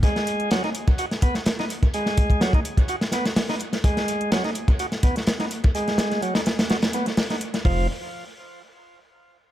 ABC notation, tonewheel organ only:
X:1
M:4/4
L:1/16
Q:"Swing 16ths" 1/4=126
K:Ab
V:1 name="Tonewheel organ"
A,4 _G, E z2 _G z _C z2 E z2 | A,4 _G, E z2 _G z _C z2 E z2 | A,4 _G, E z2 _G z _C z2 E z2 | A,4 _G, E z2 _G z _C z2 E z2 |
F,2 z12 z2 |]